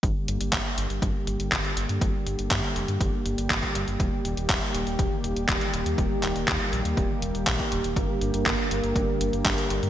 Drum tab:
HH |x-xxx-xxx-xxxxxx|x-xxx-xxx-xxxxxx|x-xxx-xxx-xxxxxx|x-xxx-xxx-xxxxxx|
CP |----x-------x---|----x-------x---|----x-------x---|--x-x-------x---|
BD |o---o---o---o---|o---o---o---oo--|o---o---o---o---|o---o---o---oo--|

HH |x-xxx-xxx-xxxxxx|
CP |----x-------x---|
BD |o---o---o---o---|